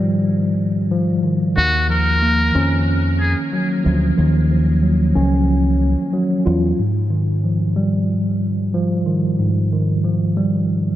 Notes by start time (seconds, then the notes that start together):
Already playing: G#2 D#3 F3 G3
0.92 F3
1.24 D#3
1.56 D#2 D#3 F#4
1.89 F3 A#4
2.22 A#3
2.55 F2 C#4
3.20 G#4
3.53 F#3
3.84 D2 F3
4.18 D#2 D#3
4.51 F3
4.83 F#3
5.16 C#2 C#4
6.13 F#3
6.46 E2 F4
6.79 G#2
7.10 D#3
7.44 F3
7.76 G3
8.74 F3
9.06 D#3
9.39 G#2
9.73 D#3
10.04 F3
10.37 G3